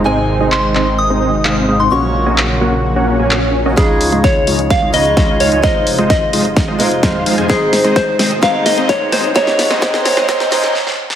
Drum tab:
HH |----------------|----------------|x-oxx-oxx-oxx-ox|x-oxx-oxx-oxx-ox|
CP |----x-x-----x---|----x-------x---|----------------|----------------|
SD |----------------|----------------|o---o---o---o---|o---o---o---o---|
BD |----------------|----------------|o---o---o---o---|o---o---o---o---|

HH |x-oxx-oxx-oxx-ox|x-oxx-oxx-ox----|
CP |----------------|----------------|
SD |o-o-o-o-o-o-o-o-|oooooooooooooo-o|
BD |o---o---o---o---|o---o---o-------|